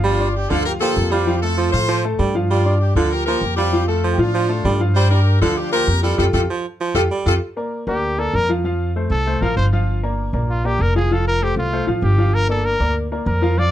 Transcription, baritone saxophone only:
0.04 G3
0.50 D3
0.82 F3
1.12 G3
1.58 F3
1.89 F3
2.19 G3
2.51 G3
2.97 D3
3.28 F3
3.58 G3
4.04 F3
4.34 F3
4.65 G3
4.96 G3
5.42 D3
5.73 F3
6.04 G3
6.50 F3
6.81 F3
7.11 G3

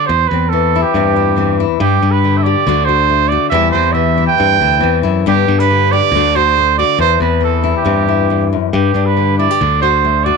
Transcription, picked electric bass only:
0.09 E2
0.31 E2
0.94 G2
1.80 G2
2.02 G2
2.67 D2
3.52 E2
3.75 E2
4.40 G2
4.61 D2
4.83 E2
5.05 F#2
5.27 G2
5.48 G2
6.12 D2
6.99 E2
7.20 E2
7.86 G2
8.73 G2
8.94 G2
9.61 D2

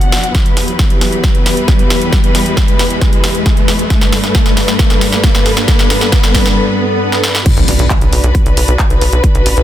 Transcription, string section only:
Already playing: B2 B3 D4 F#4 F#5
0.35 E2 E3 B3 G4 B4
3.90 G2 G3 D4 A4 B4
7.46 D4 F#4 B4

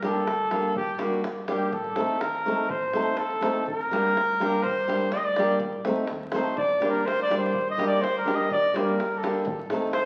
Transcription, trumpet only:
0.07 A4
0.77 G4
0.99 F#4
1.49 G4
1.73 A4
2.20 A#4
2.70 C5
3.18 A4
3.67 A#4
4.63 C5
5.12 D5
5.17 D#5
5.25 D5
6.33 C5
6.57 D5
6.90 A#4
7.06 C5
7.23 D5
7.37 C5
7.70 D#5
7.87 D5
8.01 C5
8.18 A#4
8.35 D#5
8.52 D5
8.76 C5
8.84 A#4
9.18 A4
9.93 C5

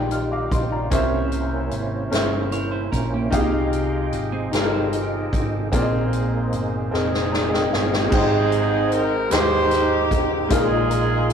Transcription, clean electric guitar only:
2.52 E4 C#5
2.71 E4 C5
2.92 C#4 A#4
3.14 A#3 G4
4.32 C4 G#4
4.53 D4 A#4
4.73 D#4 C5

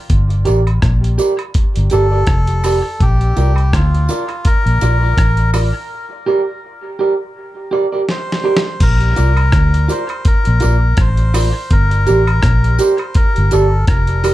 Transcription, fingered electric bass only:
0.11 G1
0.48 A1
0.83 A#1
1.77 G1
1.93 G1
2.28 F1
3.01 A#1
3.37 C2
3.74 D2
4.66 A#1
4.82 A#1
5.18 A1
8.81 A#1
9.19 C2
9.53 D2
10.47 A#1
10.64 A#1
10.98 A1
11.71 G1
12.09 A1
12.44 A#1
13.38 G1
13.53 G1
13.88 F1

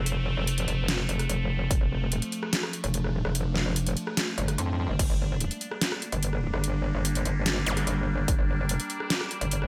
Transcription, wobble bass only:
Already playing: F1
0.37 F1
0.68 F1
1.09 F1
1.29 F1
1.71 F1
1.81 F1
2.84 F1
3.25 F1
3.66 F1
4.38 G1
4.58 F2
4.89 G1
4.99 G1
5.10 G1
6.12 G1
6.54 G1
6.95 G1
7.25 G1
7.66 G1
7.87 G1
8.28 G1
8.39 G1
9.41 G1

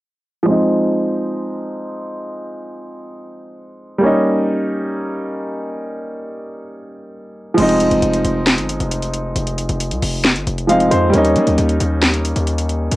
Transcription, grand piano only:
0.43 F3 G#3
0.48 C4 D#4
3.98 G3 A#3
4.03 C#4 D#4
7.54 F3 G#3
7.60 C4 D#4
10.67 F3 G#3 C4 D#4 F5
10.91 C5
11.10 G3 A#3
11.15 C#4 D#4

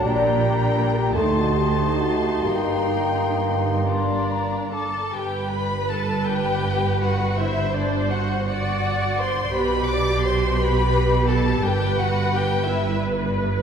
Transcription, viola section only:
Already playing: D4
1.16 D#4
3.88 D4
5.13 B4
7.40 C5
8.49 D5
9.56 G4
11.64 B4
12.68 B4

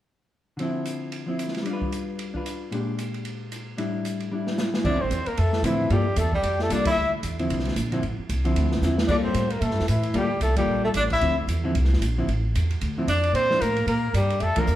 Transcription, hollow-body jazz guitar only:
0.57 D3 F3 C4
0.63 E4
1.27 F3 C4 E4
1.62 G3
1.66 D4 F4
1.73 B4
2.34 D4 F4 B4
2.71 A#2 G#3 D4
2.75 G4
3.77 A2 G3 D4 E4
4.32 G3 D4 E4
4.85 D3 F3 C4 E4
5.64 D3 F3 C4 E4
5.90 G3 A#3 F4 A4
6.70 G3 A#3 F4 A4
7.39 D3 F3 C4 E4
7.92 D3 F3 C4 E4
8.45 D3 F3 C4 E4
8.83 D3 F3 C4 E4
9.09 G3 A#3 F4 A4
10.14 G3 A#3 F4 A4
10.57 G3 A#3 F4 A4
11.21 D3 F3 C4 E4
11.64 D3 F3 C4 E4
12.18 D3 F3 C4 E4
12.98 D3 F3 C4 E4
13.50 F3 A3 D4
14.57 F3 A3 D4

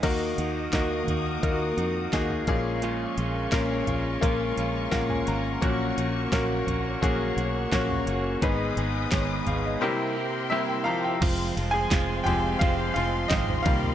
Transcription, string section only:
0.05 A#4 D#5 F#5 D#6
2.47 A#4 F5 G#5 C#6
5.63 C#5 F#5
8.42 B4 D#5 G#5 D#6
9.83 A#4 C5 G5 C6
11.23 G#3 C5 F5 C6
13.65 A#4 D#5 A#5

